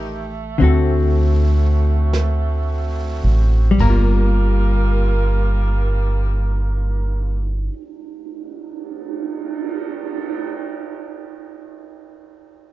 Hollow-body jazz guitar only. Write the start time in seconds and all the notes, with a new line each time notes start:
Already playing: A3 D#4 G4 C5 G5
0.58 D3 C4 F#4
0.64 A4
3.71 G3
3.80 A#3 A#5
3.90 F4